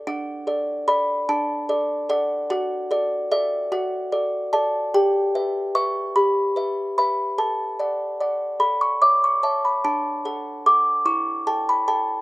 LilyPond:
\new Staff \with { instrumentName = "Music box" } { \time 6/8 \key d \major \tempo 4. = 49 << { fis''4 b''8 a''4 fis''8 | fis''4 e''8 fis''4 a''8 | g''4 cis'''8 b''4 b''8 | a''4. b''16 cis'''16 d'''16 cis'''16 a''16 b''16 |
a''4 d'''8 cis'''8 a''16 b''16 a''8 | } \\ { d'8 <a' d''>8 <a' d''>8 d'8 <a' d''>8 <a' d''>8 | fis'8 <a' d''>8 <a' d''>8 fis'8 <a' d''>8 <a' d''>8 | g'8 <b' e''>8 <b' e''>8 g'8 <b' e''>8 <b' e''>8 | a'8 <d'' fis''>8 <d'' fis''>8 a'8 <cis'' e''>8 <cis'' e''>8 |
d'8 <a' fis''>8 <a' fis''>8 e'8 <a' g''>8 <a' g''>8 | } >> }